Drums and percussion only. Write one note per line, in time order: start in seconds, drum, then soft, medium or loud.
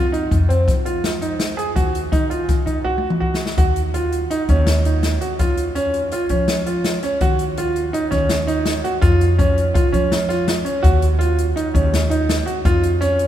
0.14 closed hi-hat medium
0.31 kick medium
0.31 closed hi-hat medium
0.50 closed hi-hat soft
0.68 kick loud
0.68 snare soft
0.68 closed hi-hat medium
0.86 closed hi-hat medium
1.04 snare loud
1.04 closed hi-hat medium
1.22 closed hi-hat medium
1.40 snare loud
1.40 closed hi-hat medium
1.59 closed hi-hat medium
1.76 kick medium
1.76 closed hi-hat medium
1.95 closed hi-hat medium
2.13 kick medium
2.13 closed hi-hat medium
2.31 closed hi-hat medium
2.49 kick loud
2.49 snare soft
2.49 closed hi-hat medium
2.67 kick medium
2.67 closed hi-hat medium
2.85 kick soft
2.98 high tom soft
3.10 mid tom medium
3.22 kick medium
3.34 snare medium
3.46 snare medium
3.58 kick loud
3.58 closed hi-hat medium
3.76 closed hi-hat medium
3.94 closed hi-hat medium
4.12 closed hi-hat medium
4.31 closed hi-hat medium
4.49 kick medium
4.49 closed hi-hat medium
4.67 snare loud
4.67 closed hi-hat medium
4.85 closed hi-hat medium
5.03 snare loud
5.03 closed hi-hat medium
5.21 closed hi-hat medium
5.39 kick medium
5.39 closed hi-hat medium
5.57 closed hi-hat medium
5.76 closed hi-hat medium
5.94 closed hi-hat soft
6.12 closed hi-hat medium
6.29 kick medium
6.29 closed hi-hat medium
6.48 snare loud
6.48 closed hi-hat medium
6.66 closed hi-hat medium
6.84 snare loud
6.84 closed hi-hat medium
7.03 snare soft
7.03 closed hi-hat medium
7.21 kick loud
7.21 closed hi-hat medium
7.39 closed hi-hat medium
7.57 closed hi-hat medium
7.76 closed hi-hat medium
7.94 closed hi-hat medium
8.12 kick medium
8.12 snare soft
8.12 closed hi-hat medium
8.29 snare loud
8.29 closed hi-hat medium
8.48 closed hi-hat medium
8.66 snare loud
8.66 closed hi-hat medium
8.85 closed hi-hat medium
9.02 kick loud
9.02 closed hi-hat medium
9.21 closed hi-hat medium
9.39 kick loud
9.39 closed hi-hat medium
9.58 closed hi-hat medium
9.75 kick loud
9.75 closed hi-hat medium
9.94 kick medium
9.94 closed hi-hat medium
10.12 snare loud
10.12 closed hi-hat medium
10.30 snare soft
10.30 closed hi-hat medium
10.48 snare loud
10.48 closed hi-hat medium
10.66 closed hi-hat medium
10.84 kick loud
10.84 closed hi-hat medium
11.02 closed hi-hat medium
11.21 closed hi-hat medium
11.39 closed hi-hat medium
11.57 closed hi-hat medium
11.75 kick medium
11.75 closed hi-hat medium
11.94 snare loud
11.94 closed hi-hat medium
12.11 closed hi-hat medium
12.29 snare loud
12.29 closed hi-hat medium
12.47 closed hi-hat medium
12.65 kick medium
12.65 closed hi-hat medium
12.83 closed hi-hat medium
13.02 snare soft
13.02 closed hi-hat medium
13.19 closed hi-hat medium